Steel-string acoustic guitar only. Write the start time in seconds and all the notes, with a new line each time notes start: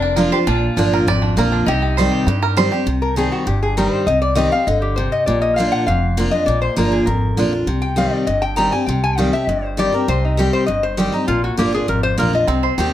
Already playing: F2
0.17 F3 A#3 D4 F4
0.32 D4 F4
0.47 A#2
0.77 F3 A#3 D4 F4
1.08 F2
1.37 F3 A#3 D4 F4
1.68 C3
1.98 D#3 G3 C4 G4
2.28 G2
2.57 D#3 G3 C4 G4
2.72 C4 G4
2.87 C3
3.16 D#3 G3 C4 G4
3.47 G2
3.77 D#3 G3 C4 G4
4.08 C3
4.35 D#3 G3 C4 G4
4.52 C4 G4
4.68 D3
4.98 C3
5.28 A#2
5.58 F3 A#3 D4 F4
5.88 F2
6.17 F3 A#3 D4 F4
6.33 D4 F4
6.48 A#2
6.76 F3 A#3 D4 F4
7.07 F2
7.37 F3 A#3 D4 F4
7.53 D4 F4
7.67 C3
7.96 D#3 G3 C4 G4
8.27 G2
8.56 D#3 G3 C4 G4
8.73 C4 G4
8.89 C3
9.18 D#3 G3 C4 G4
9.33 C4 G4
9.49 G2
9.77 D#3 G3 C4 G4
9.92 C4 G4
10.08 C3
10.37 D#3 G3 C4 G4
10.68 G2
10.97 D#3 G3 C4 G4
11.12 C4 G4
11.28 A#2
11.57 F3 A#3 D4 F4
11.73 D4 F4
11.88 F2
12.18 F3 A#3 D4 F4
12.33 D4 F4
12.48 C3
12.78 D#3 G3 C4 G4